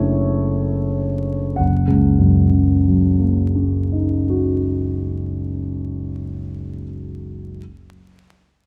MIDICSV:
0, 0, Header, 1, 2, 480
1, 0, Start_track
1, 0, Tempo, 1474201
1, 511, Time_signature, 6, 3, 24, 8
1, 511, Tempo, 1273885
1, 3185, End_track
2, 0, Start_track
2, 0, Title_t, "Grand piano"
2, 0, Program_c, 0, 0
2, 0, Control_c, 0, 64, 127
2, 0, Note_on_c, 0, 30, 36
2, 0, Note_on_c, 0, 57, 28
2, 0, Note_on_c, 0, 62, 29
2, 0, Note_on_c, 0, 64, 29
2, 0, Note_on_c, 0, 69, 29
2, 0, Note_on_c, 0, 73, 48
2, 500, Note_off_c, 0, 62, 0
2, 501, Note_off_c, 0, 30, 0
2, 501, Note_off_c, 0, 57, 0
2, 503, Note_off_c, 0, 64, 0
2, 503, Note_off_c, 0, 69, 0
2, 509, Note_on_c, 0, 78, 39
2, 518, Note_on_c, 0, 30, 33
2, 520, Control_c, 0, 64, 0
2, 523, Note_off_c, 0, 73, 0
2, 610, Control_c, 0, 64, 127
2, 625, Note_on_c, 0, 37, 31
2, 743, Note_on_c, 0, 42, 26
2, 863, Note_on_c, 0, 49, 26
2, 1002, Note_on_c, 0, 54, 28
2, 1123, Note_on_c, 0, 58, 25
2, 1259, Note_on_c, 0, 61, 25
2, 1398, Note_on_c, 0, 63, 23
2, 1539, Note_on_c, 0, 66, 22
2, 2214, Note_off_c, 0, 78, 0
2, 2224, Note_off_c, 0, 30, 0
2, 2332, Note_off_c, 0, 37, 0
2, 2449, Note_off_c, 0, 42, 0
2, 2491, Note_off_c, 0, 66, 0
2, 2492, Note_off_c, 0, 58, 0
2, 2492, Note_off_c, 0, 61, 0
2, 2492, Note_off_c, 0, 63, 0
2, 2493, Note_off_c, 0, 49, 0
2, 2498, Note_off_c, 0, 54, 0
2, 2782, Control_c, 0, 64, 0
2, 3185, End_track
0, 0, End_of_file